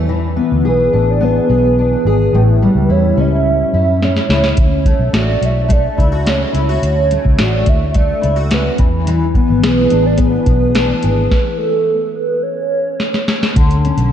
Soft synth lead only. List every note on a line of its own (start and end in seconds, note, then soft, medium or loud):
0.68 1.12 B4 medium
1.11 1.26 D5 medium
1.24 1.79 B4 medium
1.80 2.31 B4 medium
2.36 2.93 B4 medium
2.91 3.21 C#5 medium
3.20 4.06 E5 loud
4.04 4.59 C#5 medium
4.61 5.12 C#5 medium
5.17 5.47 D5 medium
5.45 5.74 E5 medium
5.72 6.30 D5 loud
6.29 6.84 C#5 medium
6.84 7.43 C#5 medium
7.42 7.70 D5 medium
7.69 7.97 E5 medium
7.96 8.52 D5 medium
8.53 8.92 B4 medium
9.65 10.08 B4 medium
10.06 10.20 D5 loud
10.19 10.73 B4 loud
10.74 11.27 B4 medium
11.29 11.59 B4 medium
11.58 12.17 A4 medium
12.15 12.44 B4 medium
12.43 13.28 C#5 medium